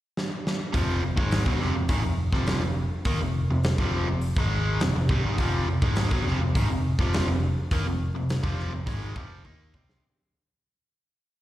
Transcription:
0.17 snare
0.47 snare
0.73 picked electric bass F1, overdriven electric guitar F2 C3 F3, kick, open hi-hat
1.02 picked electric bass F1, overdriven electric guitar F2 C3
1.16 picked electric bass G#1, overdriven electric guitar G#2 D#3 G#3, kick
1.31 snare, open hi-hat
1.45 picked electric bass B1, overdriven electric guitar B2 F#3, kick
1.60 picked electric bass F1, overdriven electric guitar F2 C3, snare
1.75 picked electric bass F1, overdriven electric guitar F2 C3
1.89 picked electric bass G#1, overdriven electric guitar G#2 D#3, kick, open hi-hat
2.04 picked electric bass F1, overdriven electric guitar F2 C3
2.32 picked electric bass F1, overdriven electric guitar F2 C3 F3, kick, snare
2.46 snare, open hi-hat
2.61 picked electric bass F1, overdriven electric guitar F2 C3
3.05 picked electric bass D#2, overdriven electric guitar D#3 A#3, kick, open hi-hat
3.20 picked electric bass F1, overdriven electric guitar F2 C3
3.50 picked electric bass F1, overdriven electric guitar F2 C3
3.63 snare, open hi-hat
3.78 picked electric bass F1, overdriven electric guitar F2 C3 F3, kick
4.08 picked electric bass F1, overdriven electric guitar F2 C3
4.21 open hi-hat
4.36 picked electric bass G#1, overdriven electric guitar G#2 D#3 G#3, kick
4.80 picked electric bass F1, overdriven electric guitar F2 C3, snare, open hi-hat
4.95 picked electric bass F1, overdriven electric guitar F2 C3
5.09 picked electric bass C2, overdriven electric guitar C3 G3, kick
5.23 picked electric bass G#1, overdriven electric guitar G#2 D#3
5.38 picked electric bass F1, overdriven electric guitar F2 C3 F3, kick, open hi-hat
5.67 picked electric bass F1, overdriven electric guitar F2 C3
5.82 picked electric bass G#1, overdriven electric guitar G#2 D#3 G#3, kick
5.96 snare, open hi-hat
6.11 picked electric bass B1, overdriven electric guitar B2 F#3, kick
6.25 picked electric bass F1, overdriven electric guitar F2 C3, snare
6.40 picked electric bass F1, overdriven electric guitar F2 C3
6.55 picked electric bass G#1, overdriven electric guitar G#2 D#3, kick, open hi-hat
6.69 picked electric bass F1, overdriven electric guitar F2 C3
6.99 picked electric bass F1, overdriven electric guitar F2 C3 F3, kick, snare
7.13 snare, open hi-hat
7.26 picked electric bass F1, overdriven electric guitar F2 C3
7.71 picked electric bass D#2, overdriven electric guitar D#3 A#3, kick, open hi-hat
7.84 picked electric bass F1, overdriven electric guitar F2 C3
8.15 picked electric bass F1, overdriven electric guitar F2 C3
8.29 snare, open hi-hat
8.43 picked electric bass F1, overdriven electric guitar F2 C3 F3, kick
8.59 snare
8.73 picked electric bass F1, overdriven electric guitar F2 C3
8.87 picked electric bass G#1, overdriven electric guitar G#2 D#3 G#3, kick, open hi-hat
9.16 picked electric bass F1, overdriven electric guitar F2 C3 F3, kick
9.45 picked electric bass D#2, overdriven electric guitar D#3 A#3 D#4, kick
9.74 overdriven electric guitar C3 G3 C4, kick
9.89 snare

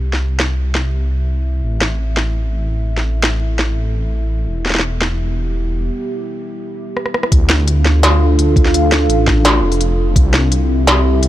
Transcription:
Already playing: detuned saw bass C2, analog synth pad C4 E4 G4 E5
0.13 snare
0.40 snare
0.75 snare
1.63 detuned saw bass A1
1.81 snare
2.15 analog synth pad A4, snare
2.97 snare
3.23 snare
3.59 snare
4.48 detuned saw bass E1, analog synth pad B3
4.66 snare
4.70 snare
4.75 snare
4.79 snare
5.01 analog synth pad G4, snare
6.97 cross-stick
7.06 cross-stick
7.14 cross-stick
7.23 cross-stick
7.32 detuned saw bass D2, analog synth pad D4, kick, closed hi-hat
7.50 snare
7.57 analog synth pad F4
7.68 analog synth pad F5, closed hi-hat
7.85 analog synth pad A4, snare
8.03 snare, closed hi-hat
8.38 detuned saw bass D2, closed hi-hat
8.56 kick, closed hi-hat
8.65 snare
8.74 closed hi-hat
8.92 snare, open hi-hat
9.09 detuned saw bass A1, closed hi-hat
9.27 kick, snare
9.45 snare, closed hi-hat
9.62 detuned saw bass F1
9.72 open hi-hat
9.81 closed hi-hat
10.16 detuned saw bass C2, analog synth pad C4, kick, closed hi-hat
10.31 analog synth pad E4, snare
10.52 closed hi-hat
10.56 analog synth pad G4
10.64 analog synth pad E5
10.87 snare, closed hi-hat
11.22 detuned saw bass C2, closed hi-hat

